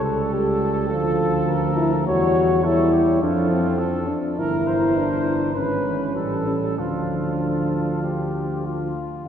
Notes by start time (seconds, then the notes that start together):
Already playing: C#2 G3 A4
0.04 A4
0.33 G3 G4 A4
0.90 D2 F3 F4 A4
1.49 A#4
1.77 E4
2.06 E2 G3 F#4 C#5
2.64 G3 E4 A4 C#5
2.93 G4
3.21 F2 F3 D4 F4 A4
3.51 C4
3.78 A4
4.09 D4
4.38 G1 E3 E4 A#4
4.68 C5
4.97 D4
5.55 G#1 E3 C#4 B4
5.87 E3
6.16 A1 G3 A4
6.47 C#4
6.77 D2 F3 D4 F4 A4
7.40 A4
8.04 G4
8.66 F4
9.25 D4